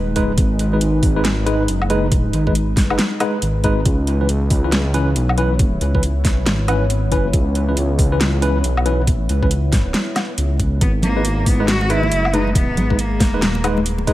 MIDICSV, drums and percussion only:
0, 0, Header, 1, 2, 480
1, 0, Start_track
1, 0, Key_signature, 5, "minor"
1, 0, Tempo, 434783
1, 416, Time_signature, 4, 2, 24, 8
1, 15602, End_track
2, 0, Start_track
2, 0, Title_t, "Drums"
2, 174, Note_on_c, 9, 42, 56
2, 176, Note_on_c, 9, 36, 65
2, 285, Note_off_c, 9, 42, 0
2, 287, Note_off_c, 9, 36, 0
2, 415, Note_on_c, 9, 42, 83
2, 416, Note_on_c, 9, 36, 127
2, 525, Note_off_c, 9, 42, 0
2, 526, Note_off_c, 9, 36, 0
2, 655, Note_on_c, 9, 42, 55
2, 765, Note_off_c, 9, 42, 0
2, 895, Note_on_c, 9, 42, 85
2, 1005, Note_off_c, 9, 42, 0
2, 1134, Note_on_c, 9, 46, 89
2, 1136, Note_on_c, 9, 36, 108
2, 1244, Note_off_c, 9, 46, 0
2, 1246, Note_off_c, 9, 36, 0
2, 1376, Note_on_c, 9, 38, 124
2, 1376, Note_on_c, 9, 42, 83
2, 1487, Note_off_c, 9, 38, 0
2, 1487, Note_off_c, 9, 42, 0
2, 1618, Note_on_c, 9, 42, 56
2, 1729, Note_off_c, 9, 42, 0
2, 1857, Note_on_c, 9, 42, 84
2, 1968, Note_off_c, 9, 42, 0
2, 2004, Note_on_c, 9, 77, 52
2, 2096, Note_on_c, 9, 42, 53
2, 2115, Note_off_c, 9, 77, 0
2, 2207, Note_off_c, 9, 42, 0
2, 2336, Note_on_c, 9, 42, 80
2, 2337, Note_on_c, 9, 36, 127
2, 2446, Note_off_c, 9, 42, 0
2, 2447, Note_off_c, 9, 36, 0
2, 2577, Note_on_c, 9, 42, 53
2, 2687, Note_off_c, 9, 42, 0
2, 2726, Note_on_c, 9, 36, 65
2, 2817, Note_on_c, 9, 42, 78
2, 2836, Note_off_c, 9, 36, 0
2, 2927, Note_off_c, 9, 42, 0
2, 3056, Note_on_c, 9, 38, 63
2, 3056, Note_on_c, 9, 46, 93
2, 3057, Note_on_c, 9, 36, 103
2, 3166, Note_off_c, 9, 38, 0
2, 3166, Note_off_c, 9, 46, 0
2, 3167, Note_off_c, 9, 36, 0
2, 3206, Note_on_c, 9, 77, 62
2, 3296, Note_on_c, 9, 38, 127
2, 3296, Note_on_c, 9, 42, 82
2, 3316, Note_off_c, 9, 77, 0
2, 3407, Note_off_c, 9, 38, 0
2, 3407, Note_off_c, 9, 42, 0
2, 3536, Note_on_c, 9, 42, 54
2, 3536, Note_on_c, 9, 77, 55
2, 3646, Note_off_c, 9, 42, 0
2, 3646, Note_off_c, 9, 77, 0
2, 3776, Note_on_c, 9, 42, 80
2, 3886, Note_off_c, 9, 42, 0
2, 4015, Note_on_c, 9, 42, 53
2, 4017, Note_on_c, 9, 36, 64
2, 4125, Note_off_c, 9, 42, 0
2, 4127, Note_off_c, 9, 36, 0
2, 4255, Note_on_c, 9, 42, 75
2, 4256, Note_on_c, 9, 36, 120
2, 4366, Note_off_c, 9, 42, 0
2, 4367, Note_off_c, 9, 36, 0
2, 4496, Note_on_c, 9, 42, 52
2, 4607, Note_off_c, 9, 42, 0
2, 4735, Note_on_c, 9, 42, 77
2, 4845, Note_off_c, 9, 42, 0
2, 4973, Note_on_c, 9, 46, 91
2, 4976, Note_on_c, 9, 36, 103
2, 5083, Note_off_c, 9, 46, 0
2, 5086, Note_off_c, 9, 36, 0
2, 5213, Note_on_c, 9, 38, 122
2, 5213, Note_on_c, 9, 42, 76
2, 5324, Note_off_c, 9, 38, 0
2, 5324, Note_off_c, 9, 42, 0
2, 5455, Note_on_c, 9, 42, 49
2, 5565, Note_off_c, 9, 42, 0
2, 5695, Note_on_c, 9, 42, 78
2, 5805, Note_off_c, 9, 42, 0
2, 5843, Note_on_c, 9, 77, 54
2, 5935, Note_on_c, 9, 42, 50
2, 5954, Note_off_c, 9, 77, 0
2, 6045, Note_off_c, 9, 42, 0
2, 6174, Note_on_c, 9, 42, 75
2, 6176, Note_on_c, 9, 36, 114
2, 6284, Note_off_c, 9, 42, 0
2, 6286, Note_off_c, 9, 36, 0
2, 6415, Note_on_c, 9, 42, 53
2, 6526, Note_off_c, 9, 42, 0
2, 6565, Note_on_c, 9, 36, 60
2, 6656, Note_on_c, 9, 42, 75
2, 6675, Note_off_c, 9, 36, 0
2, 6766, Note_off_c, 9, 42, 0
2, 6896, Note_on_c, 9, 38, 61
2, 6896, Note_on_c, 9, 46, 92
2, 6897, Note_on_c, 9, 36, 100
2, 7007, Note_off_c, 9, 36, 0
2, 7007, Note_off_c, 9, 38, 0
2, 7007, Note_off_c, 9, 46, 0
2, 7136, Note_on_c, 9, 38, 118
2, 7136, Note_on_c, 9, 42, 74
2, 7247, Note_off_c, 9, 38, 0
2, 7247, Note_off_c, 9, 42, 0
2, 7377, Note_on_c, 9, 42, 50
2, 7377, Note_on_c, 9, 77, 54
2, 7487, Note_off_c, 9, 42, 0
2, 7487, Note_off_c, 9, 77, 0
2, 7617, Note_on_c, 9, 42, 77
2, 7728, Note_off_c, 9, 42, 0
2, 7856, Note_on_c, 9, 42, 52
2, 7857, Note_on_c, 9, 36, 64
2, 7966, Note_off_c, 9, 42, 0
2, 7968, Note_off_c, 9, 36, 0
2, 8097, Note_on_c, 9, 36, 118
2, 8097, Note_on_c, 9, 42, 78
2, 8207, Note_off_c, 9, 36, 0
2, 8207, Note_off_c, 9, 42, 0
2, 8337, Note_on_c, 9, 42, 51
2, 8448, Note_off_c, 9, 42, 0
2, 8577, Note_on_c, 9, 42, 80
2, 8687, Note_off_c, 9, 42, 0
2, 8817, Note_on_c, 9, 36, 93
2, 8819, Note_on_c, 9, 46, 101
2, 8928, Note_off_c, 9, 36, 0
2, 8929, Note_off_c, 9, 46, 0
2, 9060, Note_on_c, 9, 38, 110
2, 9060, Note_on_c, 9, 42, 78
2, 9170, Note_off_c, 9, 38, 0
2, 9170, Note_off_c, 9, 42, 0
2, 9299, Note_on_c, 9, 42, 54
2, 9409, Note_off_c, 9, 42, 0
2, 9539, Note_on_c, 9, 42, 76
2, 9650, Note_off_c, 9, 42, 0
2, 9686, Note_on_c, 9, 77, 59
2, 9778, Note_on_c, 9, 42, 51
2, 9796, Note_off_c, 9, 77, 0
2, 9889, Note_off_c, 9, 42, 0
2, 10017, Note_on_c, 9, 36, 116
2, 10017, Note_on_c, 9, 42, 80
2, 10128, Note_off_c, 9, 36, 0
2, 10128, Note_off_c, 9, 42, 0
2, 10259, Note_on_c, 9, 42, 55
2, 10369, Note_off_c, 9, 42, 0
2, 10406, Note_on_c, 9, 36, 60
2, 10497, Note_on_c, 9, 42, 83
2, 10516, Note_off_c, 9, 36, 0
2, 10607, Note_off_c, 9, 42, 0
2, 10736, Note_on_c, 9, 38, 60
2, 10736, Note_on_c, 9, 46, 100
2, 10737, Note_on_c, 9, 36, 102
2, 10847, Note_off_c, 9, 38, 0
2, 10847, Note_off_c, 9, 46, 0
2, 10848, Note_off_c, 9, 36, 0
2, 10974, Note_on_c, 9, 38, 118
2, 10974, Note_on_c, 9, 42, 81
2, 11085, Note_off_c, 9, 38, 0
2, 11085, Note_off_c, 9, 42, 0
2, 11215, Note_on_c, 9, 38, 64
2, 11215, Note_on_c, 9, 42, 58
2, 11215, Note_on_c, 9, 77, 57
2, 11326, Note_off_c, 9, 38, 0
2, 11326, Note_off_c, 9, 42, 0
2, 11326, Note_off_c, 9, 77, 0
2, 11457, Note_on_c, 9, 42, 84
2, 11568, Note_off_c, 9, 42, 0
2, 11697, Note_on_c, 9, 36, 61
2, 11697, Note_on_c, 9, 42, 53
2, 11807, Note_off_c, 9, 42, 0
2, 11808, Note_off_c, 9, 36, 0
2, 11937, Note_on_c, 9, 36, 121
2, 11937, Note_on_c, 9, 42, 90
2, 12047, Note_off_c, 9, 36, 0
2, 12047, Note_off_c, 9, 42, 0
2, 12171, Note_on_c, 9, 64, 94
2, 12177, Note_on_c, 9, 42, 56
2, 12282, Note_off_c, 9, 64, 0
2, 12287, Note_off_c, 9, 42, 0
2, 12416, Note_on_c, 9, 42, 88
2, 12527, Note_off_c, 9, 42, 0
2, 12656, Note_on_c, 9, 46, 101
2, 12657, Note_on_c, 9, 36, 104
2, 12661, Note_on_c, 9, 63, 58
2, 12766, Note_off_c, 9, 46, 0
2, 12767, Note_off_c, 9, 36, 0
2, 12771, Note_off_c, 9, 63, 0
2, 12896, Note_on_c, 9, 38, 120
2, 12896, Note_on_c, 9, 42, 86
2, 13006, Note_off_c, 9, 38, 0
2, 13006, Note_off_c, 9, 42, 0
2, 13040, Note_on_c, 9, 62, 68
2, 13137, Note_on_c, 9, 42, 54
2, 13150, Note_off_c, 9, 62, 0
2, 13248, Note_off_c, 9, 42, 0
2, 13284, Note_on_c, 9, 63, 87
2, 13376, Note_on_c, 9, 42, 86
2, 13395, Note_off_c, 9, 63, 0
2, 13486, Note_off_c, 9, 42, 0
2, 13525, Note_on_c, 9, 77, 53
2, 13616, Note_on_c, 9, 62, 38
2, 13619, Note_on_c, 9, 42, 54
2, 13636, Note_off_c, 9, 77, 0
2, 13726, Note_off_c, 9, 62, 0
2, 13729, Note_off_c, 9, 42, 0
2, 13769, Note_on_c, 9, 63, 60
2, 13857, Note_on_c, 9, 36, 127
2, 13860, Note_on_c, 9, 42, 88
2, 13879, Note_off_c, 9, 63, 0
2, 13967, Note_off_c, 9, 36, 0
2, 13971, Note_off_c, 9, 42, 0
2, 14100, Note_on_c, 9, 42, 54
2, 14102, Note_on_c, 9, 64, 83
2, 14211, Note_off_c, 9, 42, 0
2, 14212, Note_off_c, 9, 64, 0
2, 14246, Note_on_c, 9, 36, 65
2, 14338, Note_on_c, 9, 42, 84
2, 14356, Note_off_c, 9, 36, 0
2, 14448, Note_off_c, 9, 42, 0
2, 14577, Note_on_c, 9, 36, 111
2, 14577, Note_on_c, 9, 38, 63
2, 14577, Note_on_c, 9, 46, 97
2, 14577, Note_on_c, 9, 62, 67
2, 14585, Note_on_c, 9, 63, 60
2, 14687, Note_off_c, 9, 38, 0
2, 14687, Note_off_c, 9, 46, 0
2, 14687, Note_off_c, 9, 62, 0
2, 14688, Note_off_c, 9, 36, 0
2, 14695, Note_off_c, 9, 63, 0
2, 14817, Note_on_c, 9, 38, 127
2, 14817, Note_on_c, 9, 42, 85
2, 14928, Note_off_c, 9, 38, 0
2, 14928, Note_off_c, 9, 42, 0
2, 14960, Note_on_c, 9, 62, 64
2, 15059, Note_on_c, 9, 42, 60
2, 15059, Note_on_c, 9, 77, 52
2, 15071, Note_off_c, 9, 62, 0
2, 15169, Note_off_c, 9, 42, 0
2, 15169, Note_off_c, 9, 77, 0
2, 15201, Note_on_c, 9, 62, 39
2, 15209, Note_on_c, 9, 63, 94
2, 15299, Note_on_c, 9, 42, 86
2, 15311, Note_off_c, 9, 62, 0
2, 15319, Note_off_c, 9, 63, 0
2, 15409, Note_off_c, 9, 42, 0
2, 15439, Note_on_c, 9, 62, 56
2, 15537, Note_on_c, 9, 36, 64
2, 15538, Note_on_c, 9, 42, 58
2, 15549, Note_off_c, 9, 62, 0
2, 15602, Note_off_c, 9, 36, 0
2, 15602, Note_off_c, 9, 42, 0
2, 15602, End_track
0, 0, End_of_file